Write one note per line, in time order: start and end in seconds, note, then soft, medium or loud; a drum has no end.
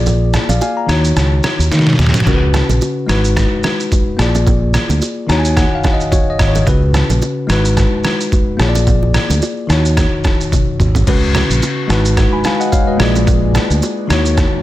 0.00 0.36 A#1 medium
0.00 0.85 A#3 medium
0.00 0.86 F4 medium
0.00 0.87 G#4 medium
0.00 0.37 D5 medium
0.06 low conga medium
0.06 shaker medium
0.33 cross-stick medium
0.33 low bongo medium
0.33 low conga medium
0.33 shaker medium
0.49 0.59 A#1 medium
0.49 0.61 D5 medium
0.49 0.61 F5 medium
0.49 low bongo medium
0.49 shaker medium
0.61 0.76 F5 medium
0.61 0.76 G#5 medium
0.61 high bongo medium
0.61 shaker medium
0.77 1.03 A#5 medium
0.86 1.11 D#2 loud
0.86 2.22 D#3 medium
0.86 2.23 D#4 medium
0.86 2.24 F#4 medium
0.86 cross-stick medium
0.86 shaker medium
0.92 2.25 C#5 medium
1.04 shaker medium
1.16 1.39 C#2 loud
1.16 cross-stick medium
1.16 low conga medium
1.16 shaker medium
1.43 cross-stick medium
1.43 low bongo medium
1.43 shaker soft
1.59 1.69 D#2 medium
1.59 shaker medium
1.71 1.94 D#3 loud
1.71 snare medium
1.71 high bongo medium
1.71 shaker medium
1.79 snare medium
1.87 snare medium
1.93 snare medium
1.99 2.11 D#2 loud
1.99 snare medium
1.99 high bongo soft
1.99 shaker soft
2.06 snare medium
2.14 snare medium
2.14 low bongo medium
2.14 shaker medium
2.20 snare medium
2.25 2.61 C#2 loud
2.25 3.08 C#3 medium
2.25 3.09 C#4 medium
2.25 3.09 F#4 medium
2.25 2.34 A#4 medium
2.25 kick loud
2.25 low conga medium
2.25 shaker medium
2.34 3.10 B4 medium
2.54 cross-stick loud
2.54 low bongo medium
2.54 low conga medium
2.54 shaker medium
2.69 2.79 A#1 medium
2.69 low bongo medium
2.69 shaker medium
2.81 high bongo medium
2.81 shaker medium
3.07 3.44 G#1 loud
3.07 4.16 G#3 medium
3.07 4.16 D#4 medium
3.07 4.17 F#4 medium
3.07 cross-stick medium
3.07 shaker medium
3.12 4.18 B4 medium
3.25 shaker medium
3.37 kick medium
3.37 cross-stick medium
3.37 low conga medium
3.37 shaker medium
3.63 cross-stick medium
3.63 low bongo medium
3.63 shaker soft
3.80 shaker medium
3.92 kick medium
3.92 high bongo medium
3.92 shaker medium
4.17 4.76 A#1 loud
4.17 5.26 A#3 medium
4.17 5.27 F4 medium
4.17 5.28 G#4 medium
4.17 cross-stick medium
4.17 high bongo soft
4.17 shaker soft
4.22 5.28 D5 medium
4.35 low bongo medium
4.35 shaker medium
4.47 kick loud
4.47 low conga medium
4.47 shaker medium
4.74 cross-stick medium
4.74 low bongo medium
4.74 low conga medium
4.74 shaker medium
4.89 4.99 D2 medium
4.89 low bongo medium
4.89 shaker medium
5.01 high bongo medium
5.01 shaker medium
5.27 5.64 D#2 loud
5.27 6.63 D#3 medium
5.27 6.64 D#4 medium
5.27 6.64 F#4 medium
5.27 5.38 A#5 medium
5.27 cross-stick medium
5.27 shaker medium
5.32 6.10 C#5 medium
5.38 5.55 G#5 medium
5.45 shaker medium
5.57 5.74 F#5 medium
5.57 kick medium
5.57 cross-stick medium
5.57 low conga medium
5.57 shaker medium
5.75 5.92 F5 medium
5.83 kick medium
5.83 cross-stick medium
5.83 low bongo medium
5.83 shaker soft
5.93 6.10 D#5 medium
6.00 shaker medium
6.11 6.29 C#5 medium
6.11 kick medium
6.11 high bongo medium
6.11 shaker medium
6.30 6.47 D#5 medium
6.39 6.62 G#1 medium
6.39 kick medium
6.39 cross-stick loud
6.39 high bongo soft
6.39 shaker soft
6.48 6.65 C#5 medium
6.55 low bongo medium
6.55 shaker medium
6.65 7.02 C#2 loud
6.65 7.49 C#3 medium
6.65 7.49 C#4 medium
6.65 7.49 F#4 medium
6.65 7.50 B4 medium
6.65 kick loud
6.65 low conga medium
6.65 shaker medium
6.94 cross-stick loud
6.94 low bongo medium
6.94 low conga medium
6.94 shaker medium
7.09 7.19 A#1 medium
7.09 low bongo medium
7.09 shaker medium
7.22 high bongo medium
7.22 shaker medium
7.47 7.84 G#1 loud
7.47 8.56 G#3 medium
7.47 8.57 D#4 medium
7.47 8.58 F#4 medium
7.47 cross-stick medium
7.47 shaker medium
7.52 8.59 B4 medium
7.65 shaker medium
7.77 kick medium
7.77 cross-stick medium
7.77 low conga medium
7.77 shaker medium
8.04 cross-stick medium
8.04 low bongo medium
8.04 shaker soft
8.20 shaker medium
8.32 kick medium
8.32 high bongo medium
8.32 shaker medium
8.57 9.17 A#1 medium
8.57 9.66 A#3 medium
8.57 9.67 F4 medium
8.57 9.68 G#4 medium
8.57 cross-stick loud
8.57 high bongo soft
8.57 shaker soft
8.62 8.68 C#5 medium
8.69 9.72 D5 medium
8.75 low bongo medium
8.75 shaker medium
8.87 kick loud
8.87 low conga medium
8.87 shaker medium
9.03 high bongo medium
9.14 cross-stick medium
9.14 low conga medium
9.14 shaker medium
9.30 9.40 D2 medium
9.30 low bongo medium
9.30 shaker medium
9.42 high bongo medium
9.42 shaker medium
9.67 10.04 D#2 medium
9.67 11.03 D#3 medium
9.67 11.04 D#4 medium
9.67 9.77 F4 medium
9.67 cross-stick medium
9.67 shaker medium
9.72 11.06 C#5 medium
9.77 11.07 F#4 medium
9.85 shaker medium
9.97 kick medium
9.97 cross-stick medium
9.97 low conga medium
9.97 shaker medium
10.24 kick medium
10.24 cross-stick medium
10.24 low bongo medium
10.24 shaker soft
10.41 shaker medium
10.52 kick medium
10.52 high tom medium
10.52 high bongo medium
10.52 shaker medium
10.80 11.02 G#1 medium
10.80 mid tom medium
10.80 high bongo medium
10.80 shaker soft
10.95 floor tom medium
10.95 low bongo medium
10.95 shaker medium
11.06 11.42 C#2 loud
11.06 11.89 C#3 medium
11.06 14.07 G#3 medium
11.06 11.90 C#4 medium
11.06 12.98 F#4 medium
11.06 11.89 F#4 medium
11.06 11.90 B4 medium
11.06 kick loud
11.06 crash loud
11.06 low conga medium
11.06 shaker medium
11.34 cross-stick loud
11.34 low bongo medium
11.34 low conga medium
11.34 shaker medium
11.50 11.60 A#1 medium
11.50 shaker medium
11.62 high bongo medium
11.62 shaker medium
11.87 12.25 G#1 loud
11.87 12.96 G#3 medium
11.87 12.97 D#4 medium
11.87 12.98 F#4 medium
11.87 cross-stick medium
11.87 shaker medium
11.92 12.18 B4 medium
12.05 shaker medium
12.17 kick medium
12.17 cross-stick medium
12.17 low conga medium
12.17 shaker medium
12.33 12.43 G#5 medium
12.33 12.44 B5 medium
12.44 12.59 F5 medium
12.44 12.59 G#5 medium
12.44 cross-stick medium
12.44 low bongo medium
12.44 shaker soft
12.60 12.72 D#5 medium
12.60 12.72 F#5 medium
12.60 shaker medium
12.72 12.87 C#5 medium
12.72 12.87 F5 medium
12.72 kick medium
12.72 high bongo medium
12.72 shaker medium
12.87 13.14 B4 medium
12.87 13.13 D#5 medium
12.97 13.57 A#1 loud
12.97 14.06 A#3 medium
12.97 14.62 A#3 medium
12.97 14.07 F4 medium
12.97 14.08 G#4 medium
12.97 cross-stick loud
12.97 high bongo soft
12.97 shaker soft
13.02 14.09 D5 medium
13.15 low bongo medium
13.15 shaker medium
13.27 kick loud
13.27 low conga medium
13.27 shaker medium
13.55 cross-stick medium
13.55 low bongo medium
13.55 low conga medium
13.55 shaker medium
13.70 13.80 D2 medium
13.70 shaker medium
13.82 high bongo medium
13.82 shaker medium
14.07 14.45 D#2 medium
14.07 14.62 D#3 medium
14.07 14.62 C#4 medium
14.07 14.62 D#4 medium
14.07 14.62 F#4 medium
14.07 cross-stick medium
14.07 shaker medium
14.12 14.62 C#5 medium
14.25 shaker medium
14.37 kick medium
14.37 cross-stick medium
14.37 low conga medium
14.37 shaker medium